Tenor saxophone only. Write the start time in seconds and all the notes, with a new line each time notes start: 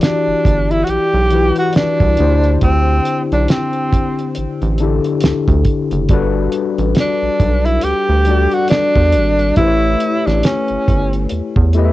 0.03 D4
0.72 E4
0.84 F#4
0.90 G4
1.58 F#4
1.76 D4
2.63 C4
3.33 D4
3.50 C4
7.00 D4
7.66 E4
7.83 G4
8.54 F#4
8.70 D4
9.57 E4
10.27 D4
10.45 C#4